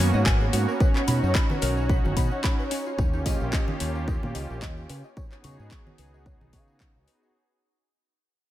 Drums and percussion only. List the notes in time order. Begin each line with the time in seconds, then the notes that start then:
0.14 tambourine
0.26 kick, clap, tambourine
0.41 tambourine
0.53 open hi-hat, tambourine
0.68 tambourine
0.80 kick, tambourine
0.95 clap, tambourine
1.08 open hi-hat, tambourine, low conga
1.24 tambourine
1.35 kick, clap, tambourine
1.50 tambourine, high conga
1.62 open hi-hat, tambourine
1.77 tambourine
1.89 kick, tambourine
2.05 tambourine, high conga
2.17 kick, open hi-hat, tambourine
2.31 tambourine
2.44 kick, clap, tambourine
2.60 tambourine
2.71 open hi-hat, tambourine
2.86 tambourine
2.99 kick, tambourine
3.13 tambourine
3.26 kick, open hi-hat, tambourine, low conga
3.41 tambourine
3.53 kick, clap, tambourine
3.68 tambourine, high conga
3.80 open hi-hat, tambourine
3.95 tambourine
4.08 kick, tambourine
4.23 tambourine, high conga
4.35 open hi-hat, tambourine
4.50 tambourine
4.62 kick, clap, tambourine
4.77 tambourine
4.89 open hi-hat, tambourine
5.04 tambourine
5.17 kick, tambourine
5.32 clap, tambourine
5.44 open hi-hat, tambourine, low conga
5.59 tambourine
5.71 kick, clap, tambourine
5.87 tambourine, high conga
5.98 open hi-hat, tambourine
6.14 tambourine
6.26 kick, tambourine
6.41 tambourine, high conga
6.53 kick, open hi-hat, tambourine
6.68 tambourine
6.80 kick, clap
6.95 tambourine
7.07 open hi-hat, tambourine
7.23 tambourine